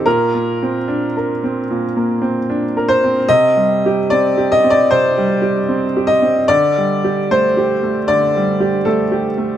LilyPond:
\new Staff \with { instrumentName = "Upright piano" } { \time 4/4 \key c \dorian \tempo 4 = 75 << { bes'2.~ bes'8 c''8 | ees''4 d''8 ees''16 d''16 c''4. ees''8 | d''4 c''4 d''4 a'8 r8 | } \\ { \tuplet 3/2 { bes,8 bes8 c'8 d'8 bes'8 c'8 bes,8 bes8 c'8 d'8 bes'8 c'8 } | \tuplet 3/2 { c8 g8 g'8 c'8 g'8 c'8 c8 g8 g'8 c'8 g'8 c'8 } | \tuplet 3/2 { d8 g8 g'8 a8 g'8 a8 d8 g8 g'8 a8 g'8 a8 } | } >> }